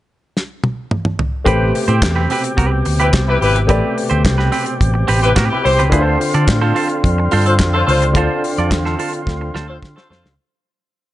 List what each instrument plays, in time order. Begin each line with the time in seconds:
0.37 snare
0.64 high tom
0.91 mid tom
1.05 mid tom
1.19 floor tom
1.44 fingered electric bass A1, tonewheel organ B2 C3 G4, grand piano A3 G4 B4 C5, clean electric guitar C4 G4 B4, kick, closed hi-hat
1.75 muted clean electric guitar stroke, open hi-hat
1.88 fingered electric bass A2, clean electric guitar C4 G4 C5, closed hi-hat
2.02 fingered electric bass E2, muted clean electric guitar stroke, kick, snare, clap, closed hi-hat
2.16 clean electric guitar C4 G4 B4
2.30 clean electric guitar C4 G4 B4, open hi-hat
2.44 muted clean electric guitar stroke, closed hi-hat
2.57 fingered electric bass C2, clean electric guitar C4 G4 B4, kick, closed hi-hat
2.72 muted clean electric guitar stroke
2.85 fingered electric bass D2, muted clean electric guitar stroke, open hi-hat
3.00 clean electric guitar C4 G4 B4, horn section E4 G4 B4, closed hi-hat
3.13 fingered electric bass C2, muted clean electric guitar stroke, kick, snare, clap, closed hi-hat
3.28 horn section E4 G4 B4, muted clean electric guitar stroke
3.41 fingered electric bass G#1, horn section E4 G4 B4, open hi-hat
3.56 muted clean electric guitar stroke, closed hi-hat
3.67 fingered electric bass A1, grand piano A3 G4 B4 D5, clean electric guitar C4 G4 B4, kick, closed hi-hat
3.96 muted clean electric guitar stroke, open hi-hat
4.10 fingered electric bass D2, clean electric guitar C4 G4 C5, closed hi-hat
4.24 fingered electric bass C2, muted clean electric guitar stroke, kick, snare, clap, closed hi-hat
4.38 clean electric guitar C4 G4 B4, snare
4.52 clean electric guitar C4 G4 B4, open hi-hat
4.66 muted clean electric guitar stroke, closed hi-hat
4.81 fingered electric bass A1, kick, closed hi-hat
4.94 muted clean electric guitar stroke
5.08 fingered electric bass A1, clean electric guitar C4 G4 B4, open hi-hat
5.21 horn section E4 G4 B4, muted clean electric guitar stroke, closed hi-hat
5.35 fingered electric bass A2, clean electric guitar C4 G4 B4, kick, snare, clap, closed hi-hat
5.50 horn section E4 G4 B4, muted clean electric guitar stroke
5.64 fingered electric bass C2, horn section E4 G4 C5, muted clean electric guitar stroke, open hi-hat
5.79 fingered electric bass C#2, clean electric guitar C4 G4 B4, closed hi-hat
5.90 fingered electric bass D2, grand piano D3 D4 F4 B4, tonewheel organ D3 C4 F4, clean electric guitar E4 G#4 B4, kick, closed hi-hat
5.99 clean electric guitar F4 A4, grand piano C5
6.04 clean electric guitar C5
6.20 muted clean electric guitar stroke, open hi-hat
6.34 fingered electric bass D3, clean electric guitar F4 A4 D5, closed hi-hat
6.47 fingered electric bass A2, muted clean electric guitar stroke, kick, snare, clap, closed hi-hat
6.61 clean electric guitar F4 A4 C5
6.75 clean electric guitar F4 A4 C5, open hi-hat
6.89 muted clean electric guitar stroke, closed hi-hat
7.04 fingered electric bass F2, kick, closed hi-hat
7.18 muted clean electric guitar stroke
7.31 fingered electric bass G2, clean electric guitar F4 A4 C5, open hi-hat
7.46 horn section F4 A4 C5, muted clean electric guitar stroke, closed hi-hat
7.59 fingered electric bass F2, muted clean electric guitar stroke, kick, snare, clap, closed hi-hat
7.73 horn section F4 A4 C5, muted clean electric guitar stroke
7.87 fingered electric bass C#2, horn section F4 A4 C5, open hi-hat
8.02 muted clean electric guitar stroke, closed hi-hat
8.13 fingered electric bass D2, grand piano D3 D4 F4 C5, clean electric guitar F4 A4, kick, closed hi-hat
8.18 clean electric guitar C5
8.44 muted clean electric guitar stroke, open hi-hat
8.57 fingered electric bass F2, clean electric guitar F4 A4 D5, closed hi-hat
8.71 fingered electric bass E2, muted clean electric guitar stroke, kick, snare, clap, closed hi-hat
8.85 clean electric guitar F4 A4 C5, snare
8.99 clean electric guitar F4 A4 C5, open hi-hat
9.13 muted clean electric guitar stroke, closed hi-hat
9.27 fingered electric bass D2, kick, snare
9.41 muted clean electric guitar stroke
9.55 fingered electric bass D2, clean electric guitar F4 A4 C5, snare
9.68 horn section F4 A4 C5, muted clean electric guitar stroke
9.83 fingered electric bass D3, muted clean electric guitar stroke, kick, snare
9.96 horn section F4 A4 C5, muted clean electric guitar stroke, snare
10.10 fingered electric bass F2, horn section F4 A4 C5, snare
10.23 fingered electric bass C#2, muted clean electric guitar stroke, snare